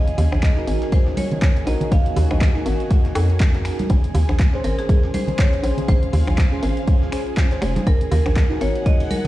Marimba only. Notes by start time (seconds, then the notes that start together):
Already playing: D#5
0.43 D#5
0.93 C5
1.17 C#5
1.67 D#5
1.92 F5
2.31 D#5
4.64 A#4
4.79 G#4
5.14 C5
5.39 C#5
5.88 C5
7.87 A#4
8.12 A#4
8.61 C#5
8.86 D#5
9.11 A#4